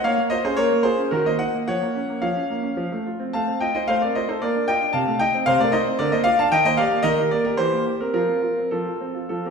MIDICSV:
0, 0, Header, 1, 2, 480
1, 0, Start_track
1, 0, Tempo, 533333
1, 42, Time_signature, 3, 2, 24, 8
1, 1003, Tempo, 554017
1, 3403, Tempo, 527704
1, 6763, Tempo, 578035
1, 8361, End_track
2, 0, Start_track
2, 0, Title_t, "Grand piano"
2, 0, Program_c, 0, 0
2, 37, Note_on_c, 0, 77, 109
2, 41, Note_on_c, 0, 58, 85
2, 46, Note_on_c, 0, 73, 89
2, 148, Note_off_c, 0, 58, 0
2, 162, Note_on_c, 0, 58, 65
2, 180, Note_off_c, 0, 77, 0
2, 263, Note_off_c, 0, 73, 0
2, 268, Note_on_c, 0, 75, 109
2, 276, Note_on_c, 0, 65, 67
2, 278, Note_on_c, 0, 72, 85
2, 285, Note_off_c, 0, 58, 0
2, 389, Note_off_c, 0, 72, 0
2, 392, Note_off_c, 0, 75, 0
2, 402, Note_off_c, 0, 65, 0
2, 402, Note_on_c, 0, 61, 65
2, 403, Note_on_c, 0, 72, 103
2, 413, Note_on_c, 0, 68, 75
2, 509, Note_on_c, 0, 73, 121
2, 515, Note_on_c, 0, 58, 74
2, 517, Note_off_c, 0, 68, 0
2, 519, Note_on_c, 0, 70, 97
2, 520, Note_off_c, 0, 72, 0
2, 525, Note_off_c, 0, 61, 0
2, 628, Note_off_c, 0, 58, 0
2, 642, Note_on_c, 0, 58, 62
2, 730, Note_off_c, 0, 73, 0
2, 743, Note_off_c, 0, 70, 0
2, 748, Note_on_c, 0, 72, 105
2, 757, Note_on_c, 0, 65, 63
2, 762, Note_on_c, 0, 68, 78
2, 767, Note_off_c, 0, 58, 0
2, 881, Note_on_c, 0, 61, 61
2, 886, Note_off_c, 0, 65, 0
2, 898, Note_off_c, 0, 72, 0
2, 988, Note_off_c, 0, 68, 0
2, 1000, Note_on_c, 0, 70, 93
2, 1003, Note_off_c, 0, 61, 0
2, 1008, Note_on_c, 0, 51, 83
2, 1016, Note_on_c, 0, 66, 77
2, 1120, Note_off_c, 0, 70, 0
2, 1121, Note_off_c, 0, 51, 0
2, 1121, Note_off_c, 0, 66, 0
2, 1130, Note_on_c, 0, 58, 58
2, 1131, Note_on_c, 0, 75, 92
2, 1143, Note_on_c, 0, 72, 71
2, 1235, Note_off_c, 0, 75, 0
2, 1240, Note_on_c, 0, 78, 107
2, 1244, Note_off_c, 0, 72, 0
2, 1248, Note_on_c, 0, 75, 74
2, 1249, Note_on_c, 0, 63, 60
2, 1251, Note_off_c, 0, 58, 0
2, 1371, Note_off_c, 0, 63, 0
2, 1372, Note_on_c, 0, 58, 54
2, 1385, Note_off_c, 0, 78, 0
2, 1468, Note_off_c, 0, 75, 0
2, 1487, Note_off_c, 0, 58, 0
2, 1489, Note_on_c, 0, 78, 105
2, 1493, Note_on_c, 0, 53, 67
2, 1497, Note_on_c, 0, 73, 90
2, 1604, Note_off_c, 0, 53, 0
2, 1611, Note_on_c, 0, 58, 55
2, 1730, Note_on_c, 0, 61, 58
2, 1733, Note_off_c, 0, 58, 0
2, 1848, Note_on_c, 0, 58, 53
2, 1853, Note_off_c, 0, 61, 0
2, 1938, Note_off_c, 0, 73, 0
2, 1958, Note_on_c, 0, 77, 91
2, 1965, Note_on_c, 0, 53, 75
2, 1968, Note_off_c, 0, 78, 0
2, 1972, Note_off_c, 0, 58, 0
2, 1972, Note_on_c, 0, 73, 64
2, 2082, Note_off_c, 0, 53, 0
2, 2088, Note_on_c, 0, 61, 50
2, 2206, Note_on_c, 0, 58, 54
2, 2213, Note_off_c, 0, 61, 0
2, 2315, Note_on_c, 0, 61, 48
2, 2333, Note_off_c, 0, 58, 0
2, 2437, Note_on_c, 0, 53, 68
2, 2442, Note_off_c, 0, 61, 0
2, 2560, Note_off_c, 0, 53, 0
2, 2570, Note_on_c, 0, 57, 48
2, 2660, Note_off_c, 0, 73, 0
2, 2688, Note_off_c, 0, 77, 0
2, 2691, Note_on_c, 0, 65, 55
2, 2697, Note_off_c, 0, 57, 0
2, 2807, Note_on_c, 0, 60, 55
2, 2818, Note_off_c, 0, 65, 0
2, 2926, Note_on_c, 0, 81, 96
2, 2929, Note_off_c, 0, 60, 0
2, 2934, Note_on_c, 0, 57, 63
2, 2937, Note_on_c, 0, 77, 70
2, 3048, Note_on_c, 0, 60, 51
2, 3049, Note_off_c, 0, 57, 0
2, 3143, Note_off_c, 0, 81, 0
2, 3156, Note_off_c, 0, 77, 0
2, 3161, Note_on_c, 0, 79, 94
2, 3163, Note_on_c, 0, 65, 56
2, 3169, Note_on_c, 0, 75, 77
2, 3174, Note_off_c, 0, 60, 0
2, 3271, Note_off_c, 0, 75, 0
2, 3283, Note_off_c, 0, 79, 0
2, 3284, Note_on_c, 0, 75, 90
2, 3286, Note_on_c, 0, 63, 52
2, 3290, Note_off_c, 0, 65, 0
2, 3295, Note_on_c, 0, 72, 69
2, 3396, Note_on_c, 0, 77, 110
2, 3397, Note_off_c, 0, 72, 0
2, 3401, Note_on_c, 0, 57, 70
2, 3402, Note_off_c, 0, 75, 0
2, 3409, Note_off_c, 0, 63, 0
2, 3410, Note_on_c, 0, 72, 83
2, 3519, Note_off_c, 0, 57, 0
2, 3519, Note_off_c, 0, 72, 0
2, 3520, Note_off_c, 0, 77, 0
2, 3525, Note_on_c, 0, 74, 83
2, 3528, Note_on_c, 0, 60, 54
2, 3538, Note_on_c, 0, 70, 60
2, 3643, Note_off_c, 0, 70, 0
2, 3645, Note_off_c, 0, 74, 0
2, 3647, Note_on_c, 0, 75, 87
2, 3652, Note_off_c, 0, 60, 0
2, 3652, Note_on_c, 0, 65, 52
2, 3655, Note_on_c, 0, 72, 67
2, 3757, Note_off_c, 0, 72, 0
2, 3765, Note_off_c, 0, 75, 0
2, 3767, Note_on_c, 0, 63, 55
2, 3771, Note_on_c, 0, 72, 87
2, 3774, Note_off_c, 0, 65, 0
2, 3778, Note_on_c, 0, 69, 65
2, 3882, Note_off_c, 0, 69, 0
2, 3885, Note_off_c, 0, 63, 0
2, 3886, Note_off_c, 0, 72, 0
2, 3887, Note_on_c, 0, 74, 97
2, 3892, Note_on_c, 0, 58, 72
2, 3895, Note_on_c, 0, 70, 72
2, 4002, Note_off_c, 0, 58, 0
2, 4015, Note_on_c, 0, 62, 52
2, 4109, Note_off_c, 0, 70, 0
2, 4121, Note_off_c, 0, 74, 0
2, 4124, Note_on_c, 0, 79, 109
2, 4130, Note_on_c, 0, 65, 60
2, 4131, Note_on_c, 0, 75, 77
2, 4132, Note_off_c, 0, 62, 0
2, 4247, Note_on_c, 0, 62, 57
2, 4248, Note_off_c, 0, 65, 0
2, 4345, Note_off_c, 0, 75, 0
2, 4351, Note_on_c, 0, 81, 100
2, 4358, Note_off_c, 0, 79, 0
2, 4360, Note_on_c, 0, 48, 69
2, 4361, Note_off_c, 0, 62, 0
2, 4364, Note_on_c, 0, 77, 75
2, 4474, Note_off_c, 0, 48, 0
2, 4481, Note_on_c, 0, 57, 57
2, 4583, Note_off_c, 0, 77, 0
2, 4593, Note_off_c, 0, 81, 0
2, 4594, Note_on_c, 0, 79, 114
2, 4602, Note_on_c, 0, 63, 62
2, 4604, Note_off_c, 0, 57, 0
2, 4605, Note_on_c, 0, 75, 88
2, 4725, Note_off_c, 0, 63, 0
2, 4729, Note_on_c, 0, 60, 66
2, 4739, Note_off_c, 0, 79, 0
2, 4824, Note_off_c, 0, 75, 0
2, 4836, Note_on_c, 0, 77, 127
2, 4843, Note_on_c, 0, 48, 81
2, 4848, Note_off_c, 0, 60, 0
2, 4850, Note_on_c, 0, 72, 98
2, 4954, Note_off_c, 0, 72, 0
2, 4955, Note_off_c, 0, 48, 0
2, 4955, Note_off_c, 0, 77, 0
2, 4964, Note_on_c, 0, 57, 64
2, 4966, Note_on_c, 0, 74, 107
2, 4978, Note_on_c, 0, 70, 81
2, 5073, Note_on_c, 0, 75, 102
2, 5078, Note_off_c, 0, 70, 0
2, 5080, Note_off_c, 0, 74, 0
2, 5081, Note_on_c, 0, 63, 73
2, 5084, Note_on_c, 0, 72, 81
2, 5085, Note_off_c, 0, 57, 0
2, 5190, Note_on_c, 0, 60, 63
2, 5203, Note_off_c, 0, 63, 0
2, 5302, Note_off_c, 0, 72, 0
2, 5312, Note_off_c, 0, 60, 0
2, 5314, Note_off_c, 0, 75, 0
2, 5315, Note_on_c, 0, 74, 111
2, 5320, Note_on_c, 0, 50, 88
2, 5322, Note_on_c, 0, 70, 89
2, 5430, Note_off_c, 0, 70, 0
2, 5434, Note_off_c, 0, 50, 0
2, 5435, Note_off_c, 0, 74, 0
2, 5436, Note_on_c, 0, 75, 100
2, 5437, Note_on_c, 0, 58, 66
2, 5450, Note_on_c, 0, 72, 77
2, 5543, Note_on_c, 0, 77, 124
2, 5553, Note_off_c, 0, 72, 0
2, 5554, Note_off_c, 0, 75, 0
2, 5554, Note_on_c, 0, 65, 71
2, 5557, Note_on_c, 0, 74, 85
2, 5561, Note_off_c, 0, 58, 0
2, 5666, Note_off_c, 0, 74, 0
2, 5667, Note_off_c, 0, 77, 0
2, 5679, Note_off_c, 0, 65, 0
2, 5682, Note_on_c, 0, 81, 112
2, 5685, Note_on_c, 0, 62, 71
2, 5694, Note_on_c, 0, 77, 94
2, 5795, Note_off_c, 0, 77, 0
2, 5796, Note_off_c, 0, 81, 0
2, 5797, Note_on_c, 0, 79, 126
2, 5798, Note_off_c, 0, 62, 0
2, 5801, Note_on_c, 0, 51, 84
2, 5809, Note_on_c, 0, 75, 104
2, 5906, Note_off_c, 0, 75, 0
2, 5912, Note_off_c, 0, 51, 0
2, 5914, Note_off_c, 0, 79, 0
2, 5920, Note_on_c, 0, 75, 116
2, 5923, Note_on_c, 0, 58, 71
2, 5931, Note_on_c, 0, 72, 80
2, 6030, Note_on_c, 0, 77, 109
2, 6033, Note_off_c, 0, 72, 0
2, 6035, Note_off_c, 0, 75, 0
2, 6035, Note_on_c, 0, 67, 73
2, 6043, Note_off_c, 0, 58, 0
2, 6043, Note_on_c, 0, 74, 93
2, 6148, Note_on_c, 0, 58, 63
2, 6159, Note_off_c, 0, 67, 0
2, 6260, Note_on_c, 0, 75, 127
2, 6261, Note_off_c, 0, 74, 0
2, 6271, Note_off_c, 0, 77, 0
2, 6272, Note_on_c, 0, 51, 92
2, 6274, Note_on_c, 0, 70, 104
2, 6276, Note_off_c, 0, 58, 0
2, 6389, Note_off_c, 0, 51, 0
2, 6399, Note_on_c, 0, 67, 62
2, 6410, Note_off_c, 0, 75, 0
2, 6499, Note_off_c, 0, 70, 0
2, 6521, Note_on_c, 0, 74, 98
2, 6524, Note_off_c, 0, 67, 0
2, 6528, Note_on_c, 0, 58, 62
2, 6531, Note_on_c, 0, 70, 78
2, 6629, Note_off_c, 0, 70, 0
2, 6642, Note_off_c, 0, 74, 0
2, 6643, Note_on_c, 0, 70, 96
2, 6651, Note_off_c, 0, 58, 0
2, 6658, Note_on_c, 0, 67, 69
2, 6755, Note_off_c, 0, 67, 0
2, 6759, Note_on_c, 0, 72, 107
2, 6764, Note_on_c, 0, 52, 76
2, 6766, Note_off_c, 0, 70, 0
2, 6768, Note_on_c, 0, 67, 71
2, 6876, Note_off_c, 0, 52, 0
2, 6889, Note_on_c, 0, 58, 59
2, 6972, Note_off_c, 0, 72, 0
2, 6986, Note_off_c, 0, 67, 0
2, 6998, Note_on_c, 0, 67, 56
2, 7007, Note_off_c, 0, 58, 0
2, 7116, Note_off_c, 0, 67, 0
2, 7119, Note_on_c, 0, 70, 77
2, 7121, Note_on_c, 0, 60, 53
2, 7129, Note_on_c, 0, 67, 60
2, 7215, Note_off_c, 0, 70, 0
2, 7227, Note_on_c, 0, 70, 89
2, 7228, Note_on_c, 0, 53, 66
2, 7232, Note_on_c, 0, 65, 70
2, 7235, Note_off_c, 0, 67, 0
2, 7239, Note_off_c, 0, 60, 0
2, 7350, Note_off_c, 0, 53, 0
2, 7350, Note_on_c, 0, 60, 52
2, 7451, Note_off_c, 0, 65, 0
2, 7463, Note_on_c, 0, 65, 55
2, 7481, Note_off_c, 0, 60, 0
2, 7597, Note_off_c, 0, 65, 0
2, 7600, Note_on_c, 0, 60, 48
2, 7703, Note_on_c, 0, 69, 75
2, 7711, Note_on_c, 0, 53, 64
2, 7712, Note_on_c, 0, 65, 54
2, 7715, Note_off_c, 0, 70, 0
2, 7726, Note_off_c, 0, 60, 0
2, 7818, Note_off_c, 0, 65, 0
2, 7831, Note_on_c, 0, 65, 45
2, 7833, Note_off_c, 0, 53, 0
2, 7950, Note_on_c, 0, 60, 53
2, 7963, Note_off_c, 0, 65, 0
2, 8064, Note_on_c, 0, 65, 44
2, 8083, Note_off_c, 0, 60, 0
2, 8173, Note_off_c, 0, 69, 0
2, 8184, Note_off_c, 0, 65, 0
2, 8186, Note_on_c, 0, 69, 68
2, 8192, Note_on_c, 0, 53, 51
2, 8196, Note_on_c, 0, 65, 56
2, 8311, Note_off_c, 0, 65, 0
2, 8314, Note_off_c, 0, 53, 0
2, 8315, Note_off_c, 0, 69, 0
2, 8320, Note_on_c, 0, 70, 58
2, 8322, Note_on_c, 0, 60, 45
2, 8330, Note_on_c, 0, 67, 49
2, 8361, Note_off_c, 0, 60, 0
2, 8361, Note_off_c, 0, 67, 0
2, 8361, Note_off_c, 0, 70, 0
2, 8361, End_track
0, 0, End_of_file